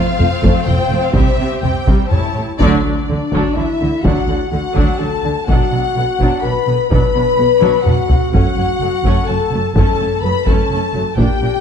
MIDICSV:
0, 0, Header, 1, 8, 480
1, 0, Start_track
1, 0, Key_signature, 2, "major"
1, 0, Tempo, 477707
1, 1157, Time_signature, 3, 2, 24, 8
1, 11661, End_track
2, 0, Start_track
2, 0, Title_t, "Violin section"
2, 0, Program_c, 0, 48
2, 0, Note_on_c, 0, 77, 105
2, 669, Note_off_c, 0, 77, 0
2, 676, Note_on_c, 0, 79, 98
2, 1036, Note_off_c, 0, 79, 0
2, 1043, Note_on_c, 0, 77, 82
2, 1159, Note_off_c, 0, 77, 0
2, 1159, Note_on_c, 0, 76, 84
2, 1618, Note_on_c, 0, 79, 79
2, 1630, Note_off_c, 0, 76, 0
2, 2104, Note_on_c, 0, 81, 71
2, 2106, Note_off_c, 0, 79, 0
2, 2595, Note_off_c, 0, 81, 0
2, 2605, Note_on_c, 0, 74, 77
2, 3537, Note_off_c, 0, 74, 0
2, 3567, Note_on_c, 0, 76, 64
2, 4045, Note_on_c, 0, 78, 53
2, 4054, Note_off_c, 0, 76, 0
2, 4523, Note_off_c, 0, 78, 0
2, 4543, Note_on_c, 0, 78, 66
2, 5013, Note_off_c, 0, 78, 0
2, 5017, Note_on_c, 0, 81, 68
2, 5500, Note_off_c, 0, 81, 0
2, 5516, Note_on_c, 0, 78, 62
2, 6461, Note_on_c, 0, 83, 65
2, 6463, Note_off_c, 0, 78, 0
2, 6925, Note_off_c, 0, 83, 0
2, 6963, Note_on_c, 0, 83, 69
2, 7881, Note_off_c, 0, 83, 0
2, 7884, Note_on_c, 0, 78, 71
2, 8363, Note_off_c, 0, 78, 0
2, 8383, Note_on_c, 0, 78, 77
2, 9315, Note_off_c, 0, 78, 0
2, 9318, Note_on_c, 0, 81, 75
2, 9800, Note_off_c, 0, 81, 0
2, 9812, Note_on_c, 0, 81, 70
2, 10277, Note_off_c, 0, 81, 0
2, 10290, Note_on_c, 0, 83, 73
2, 10526, Note_off_c, 0, 83, 0
2, 10540, Note_on_c, 0, 81, 75
2, 11249, Note_off_c, 0, 81, 0
2, 11253, Note_on_c, 0, 79, 70
2, 11661, Note_off_c, 0, 79, 0
2, 11661, End_track
3, 0, Start_track
3, 0, Title_t, "Violin section"
3, 0, Program_c, 1, 48
3, 0, Note_on_c, 1, 65, 84
3, 0, Note_on_c, 1, 72, 78
3, 1116, Note_off_c, 1, 65, 0
3, 1154, Note_on_c, 1, 67, 61
3, 2121, Note_on_c, 1, 73, 52
3, 2125, Note_off_c, 1, 72, 0
3, 2386, Note_off_c, 1, 67, 0
3, 2410, Note_off_c, 1, 73, 0
3, 2609, Note_on_c, 1, 74, 81
3, 3539, Note_off_c, 1, 74, 0
3, 3570, Note_on_c, 1, 76, 59
3, 4054, Note_on_c, 1, 78, 63
3, 4056, Note_off_c, 1, 76, 0
3, 4522, Note_off_c, 1, 78, 0
3, 4534, Note_on_c, 1, 78, 64
3, 5008, Note_off_c, 1, 78, 0
3, 5016, Note_on_c, 1, 81, 64
3, 5496, Note_on_c, 1, 78, 76
3, 5500, Note_off_c, 1, 81, 0
3, 6446, Note_on_c, 1, 83, 60
3, 6452, Note_off_c, 1, 78, 0
3, 6921, Note_off_c, 1, 83, 0
3, 6933, Note_on_c, 1, 83, 71
3, 7866, Note_off_c, 1, 83, 0
3, 7867, Note_on_c, 1, 78, 61
3, 8347, Note_off_c, 1, 78, 0
3, 8359, Note_on_c, 1, 78, 82
3, 9302, Note_off_c, 1, 78, 0
3, 9317, Note_on_c, 1, 81, 67
3, 9774, Note_off_c, 1, 81, 0
3, 9786, Note_on_c, 1, 81, 72
3, 10264, Note_off_c, 1, 81, 0
3, 10267, Note_on_c, 1, 83, 72
3, 10496, Note_on_c, 1, 81, 72
3, 10509, Note_off_c, 1, 83, 0
3, 11212, Note_on_c, 1, 79, 84
3, 11227, Note_off_c, 1, 81, 0
3, 11661, Note_off_c, 1, 79, 0
3, 11661, End_track
4, 0, Start_track
4, 0, Title_t, "French horn section"
4, 0, Program_c, 2, 60
4, 1134, Note_on_c, 2, 55, 57
4, 1140, Note_on_c, 2, 60, 64
4, 1309, Note_off_c, 2, 55, 0
4, 1313, Note_off_c, 2, 60, 0
4, 2112, Note_on_c, 2, 55, 55
4, 2124, Note_on_c, 2, 61, 49
4, 2288, Note_off_c, 2, 55, 0
4, 2296, Note_off_c, 2, 61, 0
4, 2606, Note_on_c, 2, 62, 87
4, 3537, Note_off_c, 2, 62, 0
4, 3569, Note_on_c, 2, 64, 73
4, 4043, Note_on_c, 2, 66, 77
4, 4056, Note_off_c, 2, 64, 0
4, 4508, Note_off_c, 2, 66, 0
4, 4520, Note_on_c, 2, 66, 67
4, 5001, Note_off_c, 2, 66, 0
4, 5018, Note_on_c, 2, 69, 70
4, 5500, Note_off_c, 2, 69, 0
4, 5521, Note_on_c, 2, 66, 77
4, 6446, Note_off_c, 2, 66, 0
4, 6472, Note_on_c, 2, 71, 84
4, 6931, Note_off_c, 2, 71, 0
4, 6943, Note_on_c, 2, 71, 94
4, 7871, Note_off_c, 2, 71, 0
4, 7877, Note_on_c, 2, 66, 79
4, 8338, Note_off_c, 2, 66, 0
4, 8350, Note_on_c, 2, 66, 85
4, 9120, Note_off_c, 2, 66, 0
4, 9291, Note_on_c, 2, 69, 78
4, 9777, Note_off_c, 2, 69, 0
4, 9794, Note_on_c, 2, 69, 84
4, 10268, Note_off_c, 2, 69, 0
4, 10275, Note_on_c, 2, 71, 80
4, 10518, Note_off_c, 2, 71, 0
4, 10527, Note_on_c, 2, 69, 67
4, 11229, Note_off_c, 2, 69, 0
4, 11242, Note_on_c, 2, 67, 86
4, 11661, Note_off_c, 2, 67, 0
4, 11661, End_track
5, 0, Start_track
5, 0, Title_t, "Viola section"
5, 0, Program_c, 3, 48
5, 0, Note_on_c, 3, 60, 70
5, 188, Note_on_c, 3, 57, 56
5, 268, Note_off_c, 3, 57, 0
5, 426, Note_on_c, 3, 57, 75
5, 653, Note_off_c, 3, 57, 0
5, 681, Note_on_c, 3, 57, 55
5, 762, Note_off_c, 3, 57, 0
5, 911, Note_on_c, 3, 57, 56
5, 991, Note_off_c, 3, 57, 0
5, 1152, Note_on_c, 3, 55, 59
5, 1377, Note_off_c, 3, 55, 0
5, 1396, Note_on_c, 3, 55, 51
5, 1477, Note_off_c, 3, 55, 0
5, 1638, Note_on_c, 3, 55, 48
5, 1719, Note_off_c, 3, 55, 0
5, 1889, Note_on_c, 3, 55, 70
5, 2113, Note_off_c, 3, 55, 0
5, 2119, Note_off_c, 3, 60, 0
5, 2135, Note_on_c, 3, 57, 52
5, 2137, Note_on_c, 3, 64, 49
5, 2215, Note_off_c, 3, 57, 0
5, 2379, Note_on_c, 3, 57, 49
5, 2412, Note_off_c, 3, 64, 0
5, 2460, Note_off_c, 3, 57, 0
5, 2627, Note_on_c, 3, 54, 86
5, 2631, Note_on_c, 3, 62, 82
5, 2848, Note_off_c, 3, 54, 0
5, 2850, Note_off_c, 3, 62, 0
5, 2868, Note_on_c, 3, 62, 56
5, 2870, Note_on_c, 3, 54, 48
5, 2948, Note_off_c, 3, 62, 0
5, 2950, Note_off_c, 3, 54, 0
5, 3101, Note_on_c, 3, 50, 40
5, 3105, Note_on_c, 3, 57, 42
5, 3181, Note_off_c, 3, 50, 0
5, 3186, Note_off_c, 3, 57, 0
5, 3352, Note_on_c, 3, 54, 72
5, 3352, Note_on_c, 3, 62, 74
5, 3571, Note_off_c, 3, 54, 0
5, 3571, Note_off_c, 3, 62, 0
5, 3587, Note_on_c, 3, 62, 48
5, 3590, Note_on_c, 3, 54, 50
5, 3667, Note_off_c, 3, 62, 0
5, 3671, Note_off_c, 3, 54, 0
5, 3829, Note_on_c, 3, 57, 50
5, 3834, Note_on_c, 3, 50, 53
5, 3909, Note_off_c, 3, 57, 0
5, 3914, Note_off_c, 3, 50, 0
5, 4081, Note_on_c, 3, 54, 49
5, 4084, Note_on_c, 3, 62, 55
5, 4295, Note_off_c, 3, 54, 0
5, 4297, Note_off_c, 3, 62, 0
5, 4311, Note_on_c, 3, 54, 44
5, 4319, Note_on_c, 3, 62, 48
5, 4392, Note_off_c, 3, 54, 0
5, 4400, Note_off_c, 3, 62, 0
5, 4546, Note_on_c, 3, 50, 41
5, 4550, Note_on_c, 3, 57, 41
5, 4626, Note_off_c, 3, 50, 0
5, 4631, Note_off_c, 3, 57, 0
5, 4774, Note_on_c, 3, 54, 65
5, 4776, Note_on_c, 3, 62, 67
5, 5001, Note_off_c, 3, 54, 0
5, 5001, Note_off_c, 3, 62, 0
5, 5024, Note_on_c, 3, 62, 51
5, 5028, Note_on_c, 3, 54, 46
5, 5104, Note_off_c, 3, 62, 0
5, 5108, Note_off_c, 3, 54, 0
5, 5283, Note_on_c, 3, 50, 47
5, 5283, Note_on_c, 3, 57, 49
5, 5364, Note_off_c, 3, 50, 0
5, 5364, Note_off_c, 3, 57, 0
5, 5521, Note_on_c, 3, 62, 61
5, 5525, Note_on_c, 3, 54, 55
5, 5734, Note_off_c, 3, 62, 0
5, 5737, Note_off_c, 3, 54, 0
5, 5754, Note_on_c, 3, 54, 45
5, 5760, Note_on_c, 3, 62, 44
5, 5834, Note_off_c, 3, 54, 0
5, 5840, Note_off_c, 3, 62, 0
5, 5992, Note_on_c, 3, 50, 41
5, 5994, Note_on_c, 3, 59, 39
5, 6072, Note_off_c, 3, 50, 0
5, 6075, Note_off_c, 3, 59, 0
5, 6235, Note_on_c, 3, 54, 61
5, 6235, Note_on_c, 3, 62, 66
5, 6448, Note_off_c, 3, 54, 0
5, 6448, Note_off_c, 3, 62, 0
5, 6470, Note_on_c, 3, 62, 47
5, 6472, Note_on_c, 3, 54, 48
5, 6550, Note_off_c, 3, 62, 0
5, 6552, Note_off_c, 3, 54, 0
5, 6710, Note_on_c, 3, 50, 41
5, 6712, Note_on_c, 3, 59, 50
5, 6790, Note_off_c, 3, 50, 0
5, 6792, Note_off_c, 3, 59, 0
5, 6937, Note_on_c, 3, 54, 58
5, 6937, Note_on_c, 3, 62, 52
5, 7156, Note_off_c, 3, 54, 0
5, 7156, Note_off_c, 3, 62, 0
5, 7172, Note_on_c, 3, 54, 44
5, 7178, Note_on_c, 3, 62, 47
5, 7253, Note_off_c, 3, 54, 0
5, 7258, Note_off_c, 3, 62, 0
5, 7409, Note_on_c, 3, 50, 41
5, 7418, Note_on_c, 3, 59, 42
5, 7490, Note_off_c, 3, 50, 0
5, 7499, Note_off_c, 3, 59, 0
5, 7644, Note_on_c, 3, 62, 66
5, 7648, Note_on_c, 3, 54, 71
5, 7867, Note_off_c, 3, 62, 0
5, 7868, Note_off_c, 3, 54, 0
5, 7893, Note_on_c, 3, 54, 52
5, 7896, Note_on_c, 3, 62, 48
5, 7973, Note_off_c, 3, 54, 0
5, 7976, Note_off_c, 3, 62, 0
5, 8121, Note_on_c, 3, 59, 42
5, 8122, Note_on_c, 3, 50, 47
5, 8202, Note_off_c, 3, 50, 0
5, 8202, Note_off_c, 3, 59, 0
5, 8371, Note_on_c, 3, 61, 58
5, 8379, Note_on_c, 3, 57, 58
5, 8591, Note_off_c, 3, 61, 0
5, 8595, Note_off_c, 3, 57, 0
5, 8615, Note_on_c, 3, 57, 46
5, 8617, Note_on_c, 3, 61, 53
5, 8695, Note_off_c, 3, 57, 0
5, 8698, Note_off_c, 3, 61, 0
5, 8857, Note_on_c, 3, 57, 54
5, 8859, Note_on_c, 3, 54, 44
5, 8937, Note_off_c, 3, 57, 0
5, 8939, Note_off_c, 3, 54, 0
5, 9098, Note_on_c, 3, 61, 71
5, 9100, Note_on_c, 3, 57, 77
5, 9314, Note_off_c, 3, 61, 0
5, 9316, Note_off_c, 3, 57, 0
5, 9333, Note_on_c, 3, 57, 54
5, 9333, Note_on_c, 3, 61, 52
5, 9413, Note_off_c, 3, 57, 0
5, 9413, Note_off_c, 3, 61, 0
5, 9582, Note_on_c, 3, 57, 60
5, 9583, Note_on_c, 3, 54, 48
5, 9663, Note_off_c, 3, 54, 0
5, 9663, Note_off_c, 3, 57, 0
5, 9819, Note_on_c, 3, 57, 65
5, 9821, Note_on_c, 3, 61, 65
5, 10034, Note_off_c, 3, 57, 0
5, 10035, Note_off_c, 3, 61, 0
5, 10054, Note_on_c, 3, 57, 54
5, 10054, Note_on_c, 3, 61, 48
5, 10134, Note_off_c, 3, 57, 0
5, 10135, Note_off_c, 3, 61, 0
5, 10291, Note_on_c, 3, 54, 52
5, 10295, Note_on_c, 3, 57, 50
5, 10372, Note_off_c, 3, 54, 0
5, 10376, Note_off_c, 3, 57, 0
5, 10521, Note_on_c, 3, 57, 69
5, 10523, Note_on_c, 3, 61, 65
5, 10744, Note_off_c, 3, 57, 0
5, 10745, Note_off_c, 3, 61, 0
5, 10771, Note_on_c, 3, 61, 57
5, 10773, Note_on_c, 3, 57, 56
5, 10851, Note_off_c, 3, 61, 0
5, 10853, Note_off_c, 3, 57, 0
5, 10991, Note_on_c, 3, 54, 54
5, 10998, Note_on_c, 3, 57, 57
5, 11071, Note_off_c, 3, 54, 0
5, 11079, Note_off_c, 3, 57, 0
5, 11227, Note_on_c, 3, 58, 67
5, 11234, Note_on_c, 3, 62, 56
5, 11456, Note_off_c, 3, 58, 0
5, 11456, Note_off_c, 3, 62, 0
5, 11468, Note_on_c, 3, 62, 47
5, 11471, Note_on_c, 3, 58, 48
5, 11548, Note_off_c, 3, 62, 0
5, 11551, Note_off_c, 3, 58, 0
5, 11661, End_track
6, 0, Start_track
6, 0, Title_t, "Cello section"
6, 0, Program_c, 4, 48
6, 188, Note_on_c, 4, 41, 59
6, 269, Note_off_c, 4, 41, 0
6, 433, Note_on_c, 4, 41, 85
6, 513, Note_off_c, 4, 41, 0
6, 675, Note_on_c, 4, 41, 50
6, 756, Note_off_c, 4, 41, 0
6, 912, Note_on_c, 4, 41, 56
6, 993, Note_off_c, 4, 41, 0
6, 1156, Note_on_c, 4, 48, 65
6, 1236, Note_off_c, 4, 48, 0
6, 1405, Note_on_c, 4, 48, 51
6, 1485, Note_off_c, 4, 48, 0
6, 1630, Note_on_c, 4, 48, 49
6, 1710, Note_off_c, 4, 48, 0
6, 1871, Note_on_c, 4, 48, 65
6, 1952, Note_off_c, 4, 48, 0
6, 2115, Note_on_c, 4, 45, 41
6, 2196, Note_off_c, 4, 45, 0
6, 2362, Note_on_c, 4, 45, 39
6, 2442, Note_off_c, 4, 45, 0
6, 2608, Note_on_c, 4, 50, 87
6, 2838, Note_off_c, 4, 50, 0
6, 2857, Note_on_c, 4, 50, 45
6, 2937, Note_off_c, 4, 50, 0
6, 3105, Note_on_c, 4, 50, 50
6, 3185, Note_off_c, 4, 50, 0
6, 3345, Note_on_c, 4, 50, 61
6, 3426, Note_off_c, 4, 50, 0
6, 3574, Note_on_c, 4, 50, 42
6, 3655, Note_off_c, 4, 50, 0
6, 3829, Note_on_c, 4, 50, 46
6, 3909, Note_off_c, 4, 50, 0
6, 4064, Note_on_c, 4, 50, 63
6, 4144, Note_off_c, 4, 50, 0
6, 4296, Note_on_c, 4, 50, 45
6, 4377, Note_off_c, 4, 50, 0
6, 4535, Note_on_c, 4, 50, 46
6, 4616, Note_off_c, 4, 50, 0
6, 4775, Note_on_c, 4, 50, 62
6, 4855, Note_off_c, 4, 50, 0
6, 5017, Note_on_c, 4, 50, 43
6, 5097, Note_off_c, 4, 50, 0
6, 5265, Note_on_c, 4, 50, 44
6, 5345, Note_off_c, 4, 50, 0
6, 5511, Note_on_c, 4, 47, 61
6, 5591, Note_off_c, 4, 47, 0
6, 5739, Note_on_c, 4, 47, 48
6, 5820, Note_off_c, 4, 47, 0
6, 5978, Note_on_c, 4, 47, 51
6, 6058, Note_off_c, 4, 47, 0
6, 6222, Note_on_c, 4, 47, 61
6, 6303, Note_off_c, 4, 47, 0
6, 6470, Note_on_c, 4, 47, 43
6, 6550, Note_off_c, 4, 47, 0
6, 6706, Note_on_c, 4, 47, 42
6, 6786, Note_off_c, 4, 47, 0
6, 6941, Note_on_c, 4, 47, 55
6, 7021, Note_off_c, 4, 47, 0
6, 7183, Note_on_c, 4, 47, 52
6, 7264, Note_off_c, 4, 47, 0
6, 7420, Note_on_c, 4, 47, 49
6, 7500, Note_off_c, 4, 47, 0
6, 7662, Note_on_c, 4, 47, 61
6, 7742, Note_off_c, 4, 47, 0
6, 7894, Note_on_c, 4, 47, 42
6, 7974, Note_off_c, 4, 47, 0
6, 8129, Note_on_c, 4, 47, 51
6, 8209, Note_off_c, 4, 47, 0
6, 8379, Note_on_c, 4, 42, 56
6, 8459, Note_off_c, 4, 42, 0
6, 8618, Note_on_c, 4, 42, 50
6, 8698, Note_off_c, 4, 42, 0
6, 8853, Note_on_c, 4, 42, 52
6, 8933, Note_off_c, 4, 42, 0
6, 9094, Note_on_c, 4, 42, 66
6, 9175, Note_off_c, 4, 42, 0
6, 9332, Note_on_c, 4, 42, 46
6, 9412, Note_off_c, 4, 42, 0
6, 9572, Note_on_c, 4, 42, 49
6, 9653, Note_off_c, 4, 42, 0
6, 9810, Note_on_c, 4, 42, 67
6, 9890, Note_off_c, 4, 42, 0
6, 10053, Note_on_c, 4, 42, 47
6, 10133, Note_off_c, 4, 42, 0
6, 10282, Note_on_c, 4, 42, 55
6, 10362, Note_off_c, 4, 42, 0
6, 10526, Note_on_c, 4, 42, 69
6, 10606, Note_off_c, 4, 42, 0
6, 10775, Note_on_c, 4, 42, 48
6, 10855, Note_off_c, 4, 42, 0
6, 11002, Note_on_c, 4, 42, 45
6, 11083, Note_off_c, 4, 42, 0
6, 11244, Note_on_c, 4, 46, 59
6, 11324, Note_off_c, 4, 46, 0
6, 11485, Note_on_c, 4, 46, 51
6, 11565, Note_off_c, 4, 46, 0
6, 11661, End_track
7, 0, Start_track
7, 0, Title_t, "Double bass section"
7, 0, Program_c, 5, 48
7, 193, Note_on_c, 5, 29, 61
7, 274, Note_off_c, 5, 29, 0
7, 428, Note_on_c, 5, 29, 85
7, 508, Note_off_c, 5, 29, 0
7, 670, Note_on_c, 5, 29, 62
7, 751, Note_off_c, 5, 29, 0
7, 907, Note_on_c, 5, 29, 58
7, 988, Note_off_c, 5, 29, 0
7, 1152, Note_on_c, 5, 36, 84
7, 1232, Note_off_c, 5, 36, 0
7, 1383, Note_on_c, 5, 36, 53
7, 1464, Note_off_c, 5, 36, 0
7, 1629, Note_on_c, 5, 36, 55
7, 1710, Note_off_c, 5, 36, 0
7, 1872, Note_on_c, 5, 36, 65
7, 1952, Note_off_c, 5, 36, 0
7, 2122, Note_on_c, 5, 33, 46
7, 2202, Note_off_c, 5, 33, 0
7, 2364, Note_on_c, 5, 33, 46
7, 2445, Note_off_c, 5, 33, 0
7, 2610, Note_on_c, 5, 38, 93
7, 2839, Note_off_c, 5, 38, 0
7, 2854, Note_on_c, 5, 38, 45
7, 2935, Note_off_c, 5, 38, 0
7, 3098, Note_on_c, 5, 38, 49
7, 3178, Note_off_c, 5, 38, 0
7, 3337, Note_on_c, 5, 38, 61
7, 3417, Note_off_c, 5, 38, 0
7, 3571, Note_on_c, 5, 38, 43
7, 3651, Note_off_c, 5, 38, 0
7, 3826, Note_on_c, 5, 38, 51
7, 3906, Note_off_c, 5, 38, 0
7, 4050, Note_on_c, 5, 38, 65
7, 4130, Note_off_c, 5, 38, 0
7, 4288, Note_on_c, 5, 38, 42
7, 4369, Note_off_c, 5, 38, 0
7, 4541, Note_on_c, 5, 38, 43
7, 4622, Note_off_c, 5, 38, 0
7, 4779, Note_on_c, 5, 38, 64
7, 4860, Note_off_c, 5, 38, 0
7, 5024, Note_on_c, 5, 38, 44
7, 5104, Note_off_c, 5, 38, 0
7, 5262, Note_on_c, 5, 38, 42
7, 5342, Note_off_c, 5, 38, 0
7, 5507, Note_on_c, 5, 35, 68
7, 5588, Note_off_c, 5, 35, 0
7, 5743, Note_on_c, 5, 35, 38
7, 5823, Note_off_c, 5, 35, 0
7, 5978, Note_on_c, 5, 35, 46
7, 6058, Note_off_c, 5, 35, 0
7, 6222, Note_on_c, 5, 35, 57
7, 6303, Note_off_c, 5, 35, 0
7, 6461, Note_on_c, 5, 35, 48
7, 6541, Note_off_c, 5, 35, 0
7, 6697, Note_on_c, 5, 35, 44
7, 6777, Note_off_c, 5, 35, 0
7, 6946, Note_on_c, 5, 35, 71
7, 7026, Note_off_c, 5, 35, 0
7, 7176, Note_on_c, 5, 35, 41
7, 7256, Note_off_c, 5, 35, 0
7, 7413, Note_on_c, 5, 35, 48
7, 7494, Note_off_c, 5, 35, 0
7, 7650, Note_on_c, 5, 35, 61
7, 7731, Note_off_c, 5, 35, 0
7, 7885, Note_on_c, 5, 35, 55
7, 7965, Note_off_c, 5, 35, 0
7, 8124, Note_on_c, 5, 35, 51
7, 8204, Note_off_c, 5, 35, 0
7, 8364, Note_on_c, 5, 30, 78
7, 8444, Note_off_c, 5, 30, 0
7, 8605, Note_on_c, 5, 30, 45
7, 8686, Note_off_c, 5, 30, 0
7, 8841, Note_on_c, 5, 30, 49
7, 8921, Note_off_c, 5, 30, 0
7, 9083, Note_on_c, 5, 30, 68
7, 9163, Note_off_c, 5, 30, 0
7, 9325, Note_on_c, 5, 30, 51
7, 9405, Note_off_c, 5, 30, 0
7, 9558, Note_on_c, 5, 30, 55
7, 9638, Note_off_c, 5, 30, 0
7, 9789, Note_on_c, 5, 30, 75
7, 9870, Note_off_c, 5, 30, 0
7, 10027, Note_on_c, 5, 30, 47
7, 10108, Note_off_c, 5, 30, 0
7, 10272, Note_on_c, 5, 30, 53
7, 10352, Note_off_c, 5, 30, 0
7, 10514, Note_on_c, 5, 30, 68
7, 10594, Note_off_c, 5, 30, 0
7, 10752, Note_on_c, 5, 30, 51
7, 10833, Note_off_c, 5, 30, 0
7, 10990, Note_on_c, 5, 30, 50
7, 11070, Note_off_c, 5, 30, 0
7, 11218, Note_on_c, 5, 34, 71
7, 11298, Note_off_c, 5, 34, 0
7, 11462, Note_on_c, 5, 34, 44
7, 11542, Note_off_c, 5, 34, 0
7, 11661, End_track
8, 0, Start_track
8, 0, Title_t, "Taiko and cinematic ensemble drums"
8, 201, Note_on_c, 9, 45, 53
8, 302, Note_off_c, 9, 45, 0
8, 444, Note_on_c, 9, 41, 81
8, 544, Note_off_c, 9, 41, 0
8, 680, Note_on_c, 9, 45, 62
8, 780, Note_off_c, 9, 45, 0
8, 1149, Note_on_c, 9, 41, 87
8, 1250, Note_off_c, 9, 41, 0
8, 1638, Note_on_c, 9, 45, 55
8, 1738, Note_off_c, 9, 45, 0
8, 1885, Note_on_c, 9, 41, 84
8, 1986, Note_off_c, 9, 41, 0
8, 2123, Note_on_c, 9, 45, 60
8, 2223, Note_off_c, 9, 45, 0
8, 2614, Note_on_c, 9, 41, 92
8, 2714, Note_off_c, 9, 41, 0
8, 3341, Note_on_c, 9, 41, 75
8, 3442, Note_off_c, 9, 41, 0
8, 4070, Note_on_c, 9, 41, 90
8, 4171, Note_off_c, 9, 41, 0
8, 4787, Note_on_c, 9, 41, 74
8, 4887, Note_off_c, 9, 41, 0
8, 5510, Note_on_c, 9, 41, 84
8, 5611, Note_off_c, 9, 41, 0
8, 6234, Note_on_c, 9, 41, 71
8, 6334, Note_off_c, 9, 41, 0
8, 6945, Note_on_c, 9, 41, 88
8, 7045, Note_off_c, 9, 41, 0
8, 7657, Note_on_c, 9, 48, 77
8, 7758, Note_off_c, 9, 48, 0
8, 7899, Note_on_c, 9, 45, 76
8, 7999, Note_off_c, 9, 45, 0
8, 8133, Note_on_c, 9, 43, 79
8, 8233, Note_off_c, 9, 43, 0
8, 8379, Note_on_c, 9, 41, 84
8, 8479, Note_off_c, 9, 41, 0
8, 9092, Note_on_c, 9, 41, 75
8, 9192, Note_off_c, 9, 41, 0
8, 9811, Note_on_c, 9, 41, 84
8, 9911, Note_off_c, 9, 41, 0
8, 10520, Note_on_c, 9, 41, 74
8, 10621, Note_off_c, 9, 41, 0
8, 11240, Note_on_c, 9, 41, 82
8, 11341, Note_off_c, 9, 41, 0
8, 11661, End_track
0, 0, End_of_file